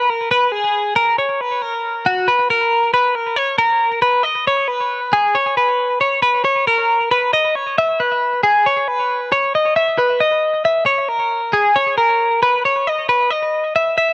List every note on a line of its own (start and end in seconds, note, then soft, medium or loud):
0.10 0.31 A#4 medium
0.31 0.52 B4 medium
0.52 0.96 G#4 medium
0.96 1.18 A#4 medium
1.19 1.41 C#5 medium
1.41 1.62 B4 medium
1.62 2.06 A#4 medium
2.06 2.28 F#4 medium
2.28 2.49 B4 medium
2.50 2.93 A#4 medium
2.94 3.15 B4 medium
3.15 3.37 A#4 medium
3.37 3.58 C#5 medium
3.58 4.02 A#4 medium
4.02 4.23 B4 medium
4.23 4.46 D#5 medium
4.47 4.68 C#5 medium
4.68 5.12 B4 medium
5.13 5.35 G#4 medium
5.35 5.57 C#5 medium
5.57 6.00 B4 medium
6.01 6.22 C#5 medium
6.22 6.44 B4 medium
6.45 6.67 C#5 medium
6.67 7.11 A#4 medium
7.11 7.33 B4 medium
7.33 7.55 D#5 medium
7.55 7.77 C#5 medium
7.78 8.00 E5 medium
8.00 8.43 B4 medium
8.43 8.65 G#4 medium
8.66 8.88 C#5 medium
8.88 9.32 B4 medium
9.32 9.54 C#5 medium
9.55 9.76 D#5 medium
9.76 9.98 E5 medium
9.98 10.21 B4 medium
10.20 10.65 D#5 medium
10.65 10.86 E5 medium
10.86 11.09 C#5 medium
11.09 11.53 A#4 medium
11.53 11.76 G#4 medium
11.76 11.97 C#5 medium
11.98 12.42 A#4 medium
12.43 12.65 B4 medium
12.65 12.87 C#5 medium
12.87 13.09 D#5 medium
13.09 13.31 B4 medium
13.31 13.75 D#5 medium
13.76 13.96 E5 medium
13.98 14.13 E5 medium